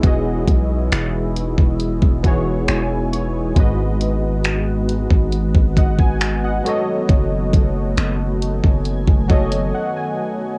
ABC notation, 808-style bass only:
X:1
M:4/4
L:1/16
Q:1/4=68
K:E
V:1 name="808-style bass" clef=bass
E,,,2 B,,,2 E,,,3 E,,,2 E,,, E,,,2 E,,,4 | G,,,6- G,,, G,,,2 G,,,4- G,,, z2 | F,,,2 F,,,2 F,,,3 F,,,2 F,,, F,,,2 z4 |]